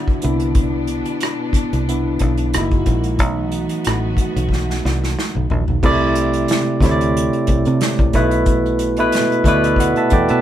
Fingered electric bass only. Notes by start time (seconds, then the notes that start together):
0.24 C2
1.53 muted fingered electric bass stroke
1.73 C2
2.21 B1
2.54 F#1
2.87 A#1
3.19 B1
3.87 A1
4.36 B1
4.85 C2
5.36 B1
5.51 A#1
5.69 B1
5.84 C2
6.81 D2
7.49 C2
7.67 C3
8.00 C2
8.15 B1
9.45 D2
10.12 E2
10.31 B2